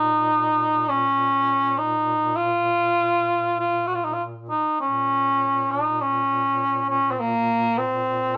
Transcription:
Already playing: A#2 D#4
0.89 C#4
1.78 D#4
2.36 F4
3.60 F4
3.87 F#4
3.95 F4
4.04 D#4
4.14 F4
4.50 D#4
4.81 A#2 C#4
5.71 D#4
6.01 C#4
6.90 C#4
7.11 C4
7.20 A#3
7.78 C4

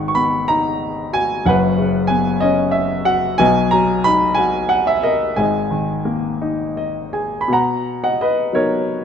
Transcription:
Already playing: G#1 G#2 D#3 F#5 C#6
0.08 C#6
0.15 B3 B5
0.48 D#4 A#5
1.13 F#4 G#5
1.45 F#1 F#2 B4 F#5
1.78 C#3
2.07 B3 G#5
2.40 C#4 D#5
2.71 E5
3.05 F#4 F#5
3.38 B1 B2 D#5 G#5
3.71 F#3 A#5
4.04 D#4 B5
4.35 F#4 G#5
4.69 F#5
4.87 E5
5.03 A#4 D#5
5.36 G#1 G#2 D#5 G#5
5.71 D#3
6.05 A#3
6.42 D#4
6.77 D#5
7.13 G#4 G#5
7.41 B5
7.48 B2
7.53 F#5 A#5
8.04 D#5 F#5
8.21 B4 D#5
8.53 F#3 B3 D#4 A#4 C#5

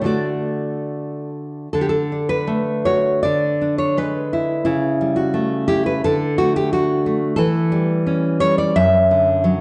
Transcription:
0.01 D3 A3 F#4
0.06 D5
1.73 D3 A4
1.81 G4
1.89 A4
2.12 D4
2.29 B4
2.47 A3
2.85 F#4 C#5
3.23 D3 D5
3.61 D4
3.78 C#5
3.97 G#3 B4
4.33 E4
4.65 C#3 E4
5.01 G3
5.16 F#4
5.34 A3
5.68 E4 G4
5.86 B4
6.04 D3 A4
6.38 A3 F#4
6.56 G4
6.73 D4 F#4
7.06 A3
7.36 E3 A4
7.72 G3
8.06 C#4
8.40 G3 C#5
8.58 D5
8.76 F#2 E5
9.11 D3
9.44 F#3

